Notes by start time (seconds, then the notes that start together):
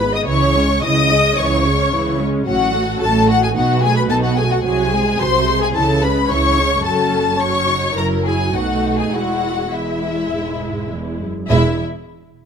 Already playing: G#1 G#2 B4 B5
0.01 B3 G#4
0.15 D#5 D#6
0.27 C#2 C#3 E3 E4 C#5 C#6
0.57 G#3 C#4
0.83 C#2 C#3 E3 E4 D#5 D#6
1.10 G#3 C#4
1.38 C#2 C#3 E3 E4 C#5 C#6
1.65 G#3 C#4
1.93 C#2 C#3 E3 E4
2.20 G#3 C#4
2.47 A1 A2 F#3 C#4 F#4 F#5
2.74 A3 F#4
3.00 A1 A2 F#3 C#4 A4 A5
3.28 A3 F#4 F#5
3.42 G#4 G#5
3.55 B1 B2 B3 D#4 F#4 F#5
3.83 A3 F#4 G#4 G#5
3.96 B4 B5
4.09 B1 B2 B3 D#4 A4 A5
4.23 F#4 F#5
4.37 A3 F#4 G#4 G#5
4.51 F#4 F#5
4.64 C2 C3 F#3 F#4 G#4 G#5
4.92 G#3 G#4
5.19 C2 C3 F#3 F#4 C5 C6
5.47 G#3 G#4
5.62 G#4 G#5
5.75 C#2 C#3 E3 E4 A4 A5
6.03 G#3 C#4 B4 B5
6.30 C#2 C#3 E3 E4 C#5 C#6
6.58 G#3 C#4
6.85 F#1 F#2 F#3 C#4 A4 A5
7.41 F#3 C#4 C#5 C#6
7.69 D#4
7.97 F#1 F#2 F#3 E4 A#4 A#5
8.25 G#4 G#5
8.53 B1 B2 A3 D#4 F#4 F#5
8.98 G#4 G#5
9.12 E1 E2 G#3 E4 F#4 F#5
9.72 E2 G#3 E4 E5
10.31 G#2
10.91 E2
11.21 F#2
11.49 E1 E2 G#3 E4 E5